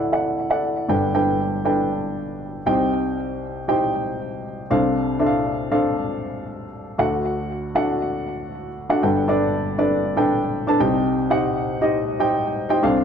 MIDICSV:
0, 0, Header, 1, 2, 480
1, 0, Start_track
1, 0, Key_signature, 1, "major"
1, 0, Tempo, 508044
1, 844, Time_signature, 4, 2, 24, 8
1, 12322, End_track
2, 0, Start_track
2, 0, Title_t, "Upright piano"
2, 0, Program_c, 0, 0
2, 0, Control_c, 0, 64, 127
2, 0, Note_on_c, 0, 38, 53
2, 0, Note_on_c, 0, 50, 55
2, 0, Note_on_c, 0, 64, 68
2, 0, Note_on_c, 0, 69, 59
2, 0, Note_on_c, 0, 74, 62
2, 0, Note_on_c, 0, 78, 72
2, 100, Note_off_c, 0, 64, 0
2, 100, Note_off_c, 0, 69, 0
2, 102, Note_off_c, 0, 74, 0
2, 103, Note_off_c, 0, 78, 0
2, 114, Note_on_c, 0, 69, 57
2, 115, Note_on_c, 0, 64, 62
2, 119, Note_on_c, 0, 74, 56
2, 122, Note_on_c, 0, 78, 68
2, 448, Note_off_c, 0, 69, 0
2, 449, Note_off_c, 0, 64, 0
2, 451, Note_off_c, 0, 74, 0
2, 452, Note_off_c, 0, 78, 0
2, 470, Note_on_c, 0, 64, 65
2, 472, Note_on_c, 0, 69, 59
2, 475, Note_on_c, 0, 74, 63
2, 477, Note_on_c, 0, 78, 71
2, 802, Note_off_c, 0, 38, 0
2, 802, Note_off_c, 0, 50, 0
2, 806, Note_off_c, 0, 64, 0
2, 807, Note_off_c, 0, 69, 0
2, 809, Note_off_c, 0, 74, 0
2, 810, Note_off_c, 0, 78, 0
2, 835, Note_on_c, 0, 62, 67
2, 836, Note_on_c, 0, 31, 60
2, 839, Note_on_c, 0, 43, 61
2, 839, Note_on_c, 0, 69, 62
2, 843, Note_on_c, 0, 71, 65
2, 845, Note_on_c, 0, 79, 78
2, 854, Control_c, 0, 64, 0
2, 999, Control_c, 0, 64, 127
2, 1059, Note_off_c, 0, 62, 0
2, 1061, Note_off_c, 0, 69, 0
2, 1063, Note_off_c, 0, 71, 0
2, 1064, Note_off_c, 0, 79, 0
2, 1078, Note_on_c, 0, 69, 62
2, 1079, Note_on_c, 0, 62, 71
2, 1081, Note_on_c, 0, 71, 68
2, 1084, Note_on_c, 0, 79, 79
2, 1520, Note_off_c, 0, 62, 0
2, 1520, Note_off_c, 0, 69, 0
2, 1521, Note_off_c, 0, 71, 0
2, 1523, Note_off_c, 0, 79, 0
2, 1557, Note_on_c, 0, 62, 72
2, 1560, Note_on_c, 0, 69, 64
2, 1562, Note_on_c, 0, 71, 69
2, 1563, Note_on_c, 0, 79, 75
2, 2439, Note_off_c, 0, 62, 0
2, 2440, Note_off_c, 0, 69, 0
2, 2442, Note_off_c, 0, 71, 0
2, 2442, Note_off_c, 0, 79, 0
2, 2483, Note_off_c, 0, 31, 0
2, 2484, Note_off_c, 0, 43, 0
2, 2513, Note_on_c, 0, 63, 80
2, 2516, Note_on_c, 0, 36, 65
2, 2516, Note_on_c, 0, 48, 65
2, 2516, Note_on_c, 0, 67, 71
2, 2519, Note_on_c, 0, 79, 90
2, 2520, Note_on_c, 0, 72, 76
2, 2537, Control_c, 0, 64, 0
2, 2690, Control_c, 0, 64, 127
2, 3397, Note_off_c, 0, 63, 0
2, 3398, Note_off_c, 0, 67, 0
2, 3400, Note_off_c, 0, 72, 0
2, 3400, Note_off_c, 0, 79, 0
2, 3477, Note_on_c, 0, 67, 64
2, 3478, Note_on_c, 0, 63, 76
2, 3483, Note_on_c, 0, 72, 69
2, 3484, Note_on_c, 0, 79, 81
2, 4359, Note_off_c, 0, 63, 0
2, 4359, Note_off_c, 0, 67, 0
2, 4362, Note_off_c, 0, 72, 0
2, 4362, Note_off_c, 0, 79, 0
2, 4402, Note_off_c, 0, 36, 0
2, 4402, Note_off_c, 0, 48, 0
2, 4444, Note_on_c, 0, 48, 68
2, 4444, Note_on_c, 0, 62, 80
2, 4446, Note_on_c, 0, 69, 77
2, 4447, Note_on_c, 0, 36, 67
2, 4447, Note_on_c, 0, 72, 74
2, 4450, Note_on_c, 0, 77, 92
2, 4454, Control_c, 0, 64, 0
2, 4633, Control_c, 0, 64, 127
2, 4883, Note_off_c, 0, 62, 0
2, 4884, Note_off_c, 0, 69, 0
2, 4884, Note_off_c, 0, 72, 0
2, 4886, Note_off_c, 0, 77, 0
2, 4907, Note_on_c, 0, 62, 80
2, 4909, Note_on_c, 0, 72, 67
2, 4910, Note_on_c, 0, 69, 67
2, 4913, Note_on_c, 0, 76, 66
2, 4974, Note_on_c, 0, 77, 87
2, 4976, Note_off_c, 0, 76, 0
2, 5355, Note_off_c, 0, 62, 0
2, 5356, Note_off_c, 0, 69, 0
2, 5356, Note_off_c, 0, 72, 0
2, 5387, Note_off_c, 0, 77, 0
2, 5400, Note_on_c, 0, 62, 76
2, 5400, Note_on_c, 0, 69, 72
2, 5401, Note_on_c, 0, 77, 91
2, 5405, Note_on_c, 0, 72, 69
2, 6280, Note_off_c, 0, 62, 0
2, 6280, Note_off_c, 0, 69, 0
2, 6281, Note_off_c, 0, 77, 0
2, 6282, Note_off_c, 0, 72, 0
2, 6326, Note_off_c, 0, 48, 0
2, 6327, Note_off_c, 0, 36, 0
2, 6597, Note_on_c, 0, 62, 68
2, 6598, Note_on_c, 0, 66, 70
2, 6600, Note_on_c, 0, 50, 65
2, 6600, Note_on_c, 0, 69, 70
2, 6603, Note_on_c, 0, 38, 62
2, 6606, Note_on_c, 0, 78, 82
2, 6617, Control_c, 0, 64, 0
2, 6783, Control_c, 0, 64, 127
2, 7259, Note_off_c, 0, 62, 0
2, 7259, Note_off_c, 0, 66, 0
2, 7260, Note_off_c, 0, 69, 0
2, 7263, Note_off_c, 0, 78, 0
2, 7323, Note_on_c, 0, 69, 73
2, 7324, Note_on_c, 0, 62, 81
2, 7325, Note_on_c, 0, 66, 72
2, 7328, Note_on_c, 0, 78, 86
2, 8201, Note_off_c, 0, 69, 0
2, 8202, Note_off_c, 0, 62, 0
2, 8202, Note_off_c, 0, 66, 0
2, 8204, Note_off_c, 0, 78, 0
2, 8404, Note_on_c, 0, 62, 79
2, 8404, Note_on_c, 0, 69, 65
2, 8406, Note_on_c, 0, 66, 69
2, 8409, Note_on_c, 0, 78, 82
2, 8483, Note_off_c, 0, 50, 0
2, 8484, Note_off_c, 0, 38, 0
2, 8513, Note_off_c, 0, 62, 0
2, 8513, Note_off_c, 0, 69, 0
2, 8514, Note_off_c, 0, 66, 0
2, 8516, Note_off_c, 0, 78, 0
2, 8529, Note_on_c, 0, 31, 60
2, 8529, Note_on_c, 0, 69, 72
2, 8530, Note_on_c, 0, 62, 71
2, 8531, Note_on_c, 0, 71, 71
2, 8532, Note_on_c, 0, 79, 81
2, 8533, Note_on_c, 0, 43, 64
2, 8535, Control_c, 0, 64, 0
2, 8720, Control_c, 0, 64, 127
2, 8745, Note_off_c, 0, 69, 0
2, 8746, Note_off_c, 0, 62, 0
2, 8746, Note_off_c, 0, 71, 0
2, 8747, Note_off_c, 0, 79, 0
2, 8766, Note_on_c, 0, 62, 86
2, 8772, Note_on_c, 0, 69, 74
2, 8773, Note_on_c, 0, 71, 73
2, 8776, Note_on_c, 0, 74, 89
2, 9204, Note_off_c, 0, 62, 0
2, 9206, Note_off_c, 0, 69, 0
2, 9207, Note_off_c, 0, 71, 0
2, 9209, Note_off_c, 0, 74, 0
2, 9242, Note_on_c, 0, 62, 77
2, 9247, Note_on_c, 0, 71, 71
2, 9247, Note_on_c, 0, 74, 84
2, 9250, Note_on_c, 0, 69, 72
2, 9572, Note_off_c, 0, 62, 0
2, 9574, Note_off_c, 0, 71, 0
2, 9574, Note_off_c, 0, 74, 0
2, 9575, Note_off_c, 0, 69, 0
2, 9604, Note_on_c, 0, 62, 78
2, 9605, Note_on_c, 0, 69, 75
2, 9606, Note_on_c, 0, 71, 67
2, 9612, Note_on_c, 0, 79, 82
2, 10043, Note_off_c, 0, 62, 0
2, 10043, Note_off_c, 0, 69, 0
2, 10043, Note_off_c, 0, 71, 0
2, 10046, Note_off_c, 0, 79, 0
2, 10083, Note_on_c, 0, 62, 83
2, 10087, Note_on_c, 0, 69, 73
2, 10091, Note_on_c, 0, 71, 68
2, 10094, Note_on_c, 0, 81, 87
2, 10168, Note_off_c, 0, 31, 0
2, 10170, Note_off_c, 0, 43, 0
2, 10202, Note_off_c, 0, 62, 0
2, 10205, Note_off_c, 0, 69, 0
2, 10205, Note_on_c, 0, 63, 85
2, 10205, Note_on_c, 0, 67, 79
2, 10206, Note_on_c, 0, 36, 72
2, 10207, Note_off_c, 0, 71, 0
2, 10207, Note_on_c, 0, 79, 92
2, 10208, Note_off_c, 0, 81, 0
2, 10209, Note_on_c, 0, 72, 79
2, 10210, Note_on_c, 0, 48, 72
2, 10215, Control_c, 0, 64, 0
2, 10371, Control_c, 0, 64, 127
2, 10643, Note_off_c, 0, 63, 0
2, 10643, Note_off_c, 0, 67, 0
2, 10644, Note_off_c, 0, 79, 0
2, 10645, Note_off_c, 0, 72, 0
2, 10678, Note_on_c, 0, 63, 84
2, 10679, Note_on_c, 0, 67, 77
2, 10685, Note_on_c, 0, 78, 88
2, 10686, Note_on_c, 0, 72, 74
2, 11119, Note_off_c, 0, 63, 0
2, 11120, Note_off_c, 0, 67, 0
2, 11123, Note_off_c, 0, 72, 0
2, 11123, Note_off_c, 0, 78, 0
2, 11157, Note_on_c, 0, 63, 81
2, 11161, Note_on_c, 0, 72, 71
2, 11164, Note_on_c, 0, 67, 74
2, 11165, Note_on_c, 0, 75, 90
2, 11489, Note_off_c, 0, 63, 0
2, 11491, Note_off_c, 0, 72, 0
2, 11492, Note_off_c, 0, 67, 0
2, 11493, Note_off_c, 0, 75, 0
2, 11519, Note_on_c, 0, 63, 78
2, 11521, Note_on_c, 0, 67, 72
2, 11523, Note_on_c, 0, 72, 71
2, 11530, Note_on_c, 0, 79, 88
2, 11960, Note_off_c, 0, 63, 0
2, 11961, Note_off_c, 0, 67, 0
2, 11962, Note_off_c, 0, 72, 0
2, 11965, Note_off_c, 0, 79, 0
2, 11991, Note_on_c, 0, 63, 85
2, 11996, Note_on_c, 0, 67, 75
2, 11996, Note_on_c, 0, 72, 77
2, 12002, Note_on_c, 0, 79, 88
2, 12086, Note_off_c, 0, 36, 0
2, 12088, Note_off_c, 0, 48, 0
2, 12111, Note_off_c, 0, 72, 0
2, 12116, Note_off_c, 0, 63, 0
2, 12118, Note_on_c, 0, 62, 87
2, 12119, Note_off_c, 0, 67, 0
2, 12121, Note_on_c, 0, 69, 75
2, 12122, Note_off_c, 0, 79, 0
2, 12125, Note_on_c, 0, 48, 74
2, 12125, Note_on_c, 0, 72, 78
2, 12126, Note_on_c, 0, 36, 75
2, 12127, Note_on_c, 0, 77, 97
2, 12134, Control_c, 0, 64, 0
2, 12286, Control_c, 0, 64, 127
2, 12322, Note_off_c, 0, 36, 0
2, 12322, Note_off_c, 0, 48, 0
2, 12322, Note_off_c, 0, 62, 0
2, 12322, Note_off_c, 0, 69, 0
2, 12322, Note_off_c, 0, 72, 0
2, 12322, Note_off_c, 0, 77, 0
2, 12322, End_track
0, 0, End_of_file